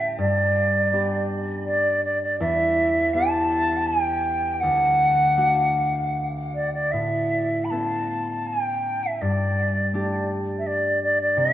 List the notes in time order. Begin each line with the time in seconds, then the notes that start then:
Already playing: A2 A3 C#4 G4
0.00 E5
0.18 G2 D5
0.92 B3 D4 G4
1.66 D5
2.04 D5
2.22 D5
2.40 E2 E5
3.14 B3 E4 G4 A5
3.87 G5
4.60 D2 F#5
5.37 A3 D4 F#4
6.55 D5
6.73 D5
6.91 A2 E5
7.65 B5
7.70 B3 C#4 A4 A5
8.47 G5
9.03 E5
9.16 E5
9.22 G2 D5
9.94 A3 D4 G4
10.59 E5
10.67 D5
11.03 D5
11.21 D5
11.37 C3 E5